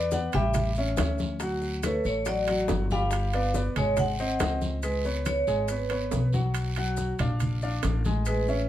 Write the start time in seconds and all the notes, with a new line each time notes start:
Already playing: E2 D5
0.11 B3 B4 D5 F#5, high bongo, high conga, low timbale, short guiro, maracas
0.32 A1 G3 G4 E5 G5, high bongo, low conga, high timbale, short guiro, maracas
0.54 high bongo, high conga, low conga, high timbale, long guiro, maracas
0.75 C#4 C#5 E5, high conga, maracas
0.97 D2 C#4 C#5 E5, high bongo, low bongo, high conga, high timbale, low timbale, short guiro, maracas
1.18 high bongo, high conga, short guiro, maracas
1.40 F#3 F#4 F#5, high bongo, high conga, high timbale, long guiro, maracas
1.61 high bongo, high conga, maracas
1.83 A3 A4 B4 C#5, high bongo, high conga, high timbale, low timbale, short guiro, maracas
2.04 A1 C#5, high bongo, high conga, short guiro, maracas
2.25 F#3 F#4 D5 F#5, high bongo, high conga, high timbale, long guiro, maracas
2.47 F#3 F#4 F#5, high bongo, high conga, high timbale, maracas
2.68 G1, high bongo, low bongo, high conga, low timbale, short guiro, maracas
2.90 G3 G4 F5 G5, high conga, short guiro, maracas
3.11 high bongo, high conga, high timbale, long guiro, maracas
3.33 B3 B4 D5, high bongo, high conga, high timbale, maracas
3.54 B3 B4 D5, high bongo, high conga, low timbale, short guiro, maracas
3.76 G#1 G#3 G#4 C#5 G#5, high bongo, low conga, high timbale, short guiro, maracas
3.97 F#5, high bongo, high conga, low conga, high timbale, long guiro, maracas
4.19 C4 C5 D#5, high conga, maracas
4.40 C#2 C4 C5 D#5, high bongo, low bongo, high conga, high timbale, low timbale, short guiro, maracas
4.61 high bongo, high conga, short guiro, maracas
4.83 G#3 G#4 B4 G#5, high conga, high timbale, long guiro, maracas
5.04 B3 B4 C#5, high conga, maracas
5.25 C#5, high conga, high timbale, low timbale, short guiro, maracas
5.47 G#1 G#3 G#4 G#5, short guiro, maracas
5.68 B3 B4 C#5, high conga, high timbale, long guiro, maracas
5.90 B3 B4 C#5, high conga, high timbale, maracas
6.11 B1, high conga, low timbale, short guiro, maracas
6.33 F#3 F#4 F#5, high conga, short guiro, maracas
6.54 high conga, high timbale, long guiro, maracas
6.76 F#3 F#4 F#5, high conga, high timbale, maracas
6.97 high conga, low timbale, short guiro, maracas
7.19 A#1 D4 D5 F5, low conga, high timbale, short guiro, maracas
7.40 high conga, low conga, high timbale, long guiro, maracas
7.62 D4 D5 F5, high conga, maracas
7.83 A1, high conga, high timbale, low timbale, short guiro, maracas
8.04 G#3 G#4 G#5, high conga, short guiro, maracas
8.25 G#3 G#4 B4 G#5, high conga, high timbale, long guiro, maracas
8.48 C#4 C#5 E5, high conga, maracas